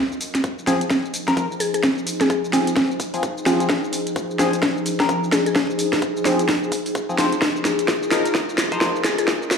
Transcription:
Already playing: ambient pad F3 F4 A#4 D#5
0.12 ambient pad D#4, shaker
0.18 ambient pad G#4, open hi-hat, shaker
0.35 snare, closed hi-hat, shaker
0.44 kick, closed hi-hat, shaker
0.59 shaker
0.66 synth stab F3 C4 G#4, ambient pad C5, snare, open hi-hat, shaker
0.81 closed hi-hat, shaker
0.90 kick, snare, closed hi-hat, shaker
1.05 shaker
1.14 open hi-hat, shaker
1.28 synth stab F3 C4 A#4, kick, snare, closed hi-hat, shaker
1.37 kick, closed hi-hat, shaker
1.52 shaker
1.60 synth pluck G#4, open hi-hat, shaker
1.74 synth pluck G#4, closed hi-hat, shaker
1.83 kick, snare, closed hi-hat, shaker
1.98 shaker
2.07 open hi-hat, shaker
2.21 synth pluck G#4, snare, closed hi-hat, shaker
2.30 synth pluck G#4, kick, closed hi-hat, shaker
2.45 shaker
2.53 synth stab F3 C4 G#4, snare, open hi-hat, shaker
2.67 closed hi-hat, shaker
2.76 kick, snare, closed hi-hat, shaker
2.91 shaker
3.00 kick, open hi-hat, shaker
3.14 synth stab F3 C4 G#4, open hi-hat, shaker
3.23 kick, closed hi-hat, shaker
3.38 shaker
3.46 synth stab F3 C4 G#4, synth pluck F4, snare, open hi-hat, shaker
3.60 synth stab F3 C4 G#4, closed hi-hat, shaker
3.69 kick, snare, closed hi-hat, shaker
3.84 shaker
3.93 open hi-hat, shaker
4.07 closed hi-hat, shaker
4.16 kick, closed hi-hat, shaker
4.31 shaker
4.39 synth stab F3 C4 G#4, snare, open hi-hat, shaker
4.53 closed hi-hat, shaker
4.62 kick, snare, closed hi-hat, shaker
4.77 shaker
4.86 open hi-hat, shaker
5.00 synth stab F3 C4 A#4, kick, snare, closed hi-hat, shaker
5.09 kick, closed hi-hat, shaker
5.24 shaker
5.32 synth pluck G#4, snare, open hi-hat, shaker
5.46 synth pluck G#4, closed hi-hat, shaker
5.56 kick, snare, closed hi-hat, shaker
5.70 shaker
5.79 open hi-hat, shaker
5.93 snare, closed hi-hat, shaker
6.02 kick, closed hi-hat, shaker
6.17 shaker
6.25 synth stab F3 C4 G#4, synth pluck C5, snare, open hi-hat, shaker
6.39 closed hi-hat, shaker
6.49 kick, snare, closed hi-hat, shaker
6.63 shaker
6.72 kick, open hi-hat, shaker
6.86 open hi-hat, shaker
6.95 kick, closed hi-hat, shaker
7.09 synth stab F3 C4 G#4, shaker
7.18 synth stab F3 C4 C5, snare, open hi-hat, shaker
7.32 closed hi-hat, shaker
7.42 ambient pad F4, kick, snare, closed hi-hat, riser, shaker
7.54 ambient pad A#4, shaker
7.65 snare, open hi-hat, shaker
7.79 closed hi-hat, shaker
7.88 kick, snare, closed hi-hat, shaker
8.03 shaker
8.11 synth stab F3 D#4 A#4, snare, open hi-hat, shaker
8.26 closed hi-hat, shaker
8.35 kick, snare, closed hi-hat, shaker
8.49 shaker
8.58 snare, open hi-hat, shaker
8.72 synth stab F3 D#4 C5, kick, closed hi-hat, shaker
8.81 kick, snare, closed hi-hat, shaker
8.88 ambient pad D#5
8.96 shaker
9.04 synth pluck G#4, snare, open hi-hat, shaker
9.18 synth pluck G#4, closed hi-hat, shaker
9.28 kick, snare, closed hi-hat, shaker
9.42 shaker
9.51 snare, open hi-hat, shaker

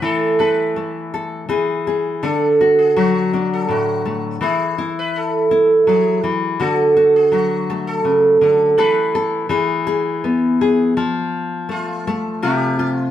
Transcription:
Already playing: nylon-string guitar A3
0.02 nylon-string guitar E3 E4, sitar A4
0.39 nylon-string guitar A4, sitar B4
0.76 nylon-string guitar A3
1.14 nylon-string guitar A4
1.49 nylon-string guitar E3 G#4
1.87 nylon-string guitar G#4
2.23 nylon-string guitar D3 D4, sitar A4
2.61 nylon-string guitar F#4
2.79 sitar G#4
2.96 nylon-string guitar F#3, sitar F#4
3.33 nylon-string guitar D4
3.53 sitar A4
3.68 nylon-string guitar A2, sitar F#4
4.05 nylon-string guitar A3
4.41 nylon-string guitar E3 E4, sitar G#4
4.78 nylon-string guitar E4
4.99 sitar B4
5.16 sitar A4
5.51 nylon-string guitar E4
5.87 nylon-string guitar F#3, sitar G#4
6.24 nylon-string guitar E3
6.60 nylon-string guitar D3 F#4, sitar A4
6.96 nylon-string guitar F#4
7.16 sitar G#4
7.32 nylon-string guitar F#3, sitar F#4
7.70 nylon-string guitar A3
7.87 sitar A4
8.05 nylon-string guitar C#3
8.41 nylon-string guitar D3, sitar A4
8.78 nylon-string guitar E3 A4, sitar B4
9.15 nylon-string guitar A4
9.49 nylon-string guitar E3 G#4
9.87 nylon-string guitar G#4
10.24 nylon-string guitar B3
10.61 nylon-string guitar G#4
10.97 nylon-string guitar F3
11.69 nylon-string guitar A3, sitar F4
12.07 nylon-string guitar A3
12.42 nylon-string guitar C3 F4, sitar G4
12.79 nylon-string guitar F4
12.99 sitar F4

